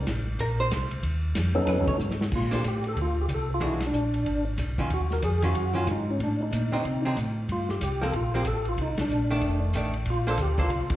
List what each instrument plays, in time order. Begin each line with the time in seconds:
0.07 tonewheel organ A1, kick, snare, hi-hat pedal, ride
0.39 tonewheel organ A#1, hollow-body jazz guitar A#4, kick, ride
0.60 hollow-body jazz guitar C5
0.71 tonewheel organ C2, kick, snare, hi-hat pedal, ride
0.91 tonewheel organ C2, ride
1.03 tonewheel organ D#2, kick, ride
1.35 tonewheel organ F2, kick, snare, hi-hat pedal, ride
1.55 tonewheel organ F2 F#3 B3 C#4 D#4 A4
1.67 tonewheel organ F#2, hollow-body jazz guitar B4, kick, snare, ride
1.78 tonewheel organ D#2
1.87 tonewheel organ B1, hollow-body jazz guitar C#5, kick
2.00 tonewheel organ G#2, hi-hat pedal
2.11 snare
2.21 snare
2.32 tonewheel organ A#2 F4, kick, crash
2.51 hollow-body jazz guitar A#3 D4 A4 C5, snare
2.55 tonewheel organ G4
2.64 tonewheel organ A2, kick, hi-hat pedal, ride
2.68 tonewheel organ G4
2.84 ride
2.89 tonewheel organ A4
2.96 tonewheel organ D2, kick, ride
3.02 tonewheel organ F4
3.21 tonewheel organ G4
3.28 tonewheel organ C2, kick, hi-hat pedal, ride
3.34 tonewheel organ A4
3.54 tonewheel organ F4
3.60 tonewheel organ B1, hollow-body jazz guitar E3 G#3 D4 F#4, kick, ride
3.66 tonewheel organ E4
3.80 snare, ride
3.87 tonewheel organ D4
3.93 tonewheel organ A#1, hi-hat pedal
4.14 ride
4.26 tonewheel organ G#1, kick, ride
4.58 tonewheel organ B1, kick, snare, hi-hat pedal, ride
4.78 hollow-body jazz guitar D#3 F#3 C#4 F4, kick
4.90 tonewheel organ D#2 F#4, kick, ride
5.11 tonewheel organ A#4, snare
5.22 tonewheel organ F2 G#4, kick, hi-hat pedal, ride
5.42 hollow-body jazz guitar D#3 F#3 C#4 F4, tonewheel organ F#4, ride
5.55 tonewheel organ F#2, kick, ride
5.74 hollow-body jazz guitar D#3 F#3 C#4 F4, tonewheel organ F4
5.87 tonewheel organ G#2 D#4, kick, hi-hat pedal, ride
6.11 tonewheel organ C#4
6.20 tonewheel organ A2 D4, kick, ride
6.43 tonewheel organ D#4
6.52 tonewheel organ A#2, kick, hi-hat pedal, ride
6.72 tonewheel organ A#2, hollow-body jazz guitar D3 F#3 C4 D#4
6.85 tonewheel organ C3, kick, ride
7.05 hollow-body jazz guitar D3 F#3 C4 D#4
7.17 tonewheel organ A2, kick, hi-hat pedal, ride
7.48 tonewheel organ G2 F4, kick, ride
7.69 tonewheel organ G4, snare
7.81 tonewheel organ C2 G4, kick, hi-hat pedal, ride
8.02 hollow-body jazz guitar F3 A#3 C4, tonewheel organ A4, snare
8.13 tonewheel organ A#1 F4, kick, ride
8.34 hollow-body jazz guitar F3 A#3 C4, tonewheel organ G4
8.45 tonewheel organ A1 A4, kick, hi-hat pedal, ride
8.65 tonewheel organ F4, ride
8.78 tonewheel organ C2 D#4, kick, ride
8.97 tonewheel organ C2, snare, ride
9.01 tonewheel organ D4
9.09 tonewheel organ A#1, hi-hat pedal
9.31 hollow-body jazz guitar D#3 A3 D4
9.41 tonewheel organ F1, kick, ride
9.73 tonewheel organ A1, hollow-body jazz guitar D#3 A3 D4, kick, hi-hat pedal, ride
9.93 ride
10.06 tonewheel organ A#1, kick, ride
10.10 tonewheel organ F4
10.27 hollow-body jazz guitar A#3 D4 A4 C5, tonewheel organ A4
10.38 tonewheel organ D2, kick, hi-hat pedal, ride
10.42 tonewheel organ G4
10.58 hollow-body jazz guitar A#3 D4 A4 C5, kick, ride
10.63 tonewheel organ F4
10.70 tonewheel organ C2, kick, ride
10.90 tonewheel organ C2, kick, ride